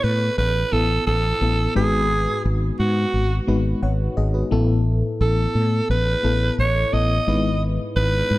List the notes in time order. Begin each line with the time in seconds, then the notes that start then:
Already playing: A2 B3 E4 A4
0.04 A2 B4
0.38 A1 B4
0.72 A1 B3 E4 A4
1.07 A1 A4
1.41 A1 B3 E4 A4
1.75 G#1 G#2 G#3 B3 D#4 F#4 G#4 B4
2.45 G#1
2.79 G#2 F#4
3.14 G#1
3.47 G#1 G#3 B3 D#4 F#4 B4
3.83 G#1 C#5 F#5
4.17 G#1 G#4 D#5
4.34 F#4 B4
4.51 A1 A2 B3 E4 A4
5.21 A1 A4
5.55 A2
5.90 A1 B4
6.23 A1 B3 E4 A4
6.59 A1 C#5
6.93 A1 B3 E4 A4 D#5
7.27 G#1 G#2 G#3 B3 D#4 E4 B4
7.96 G#1 B4
8.31 G#2